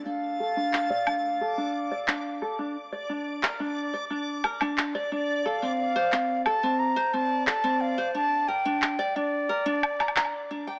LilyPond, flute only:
\new Staff \with { instrumentName = "Flute" } { \time 4/4 \key d \minor \tempo 4 = 89 f''2.~ f''8 r8 | r2. r8 d''8 | f''4. a''8 bes''8 a''8 a''8 f''8 | a''8 g''4 d''2 r8 | }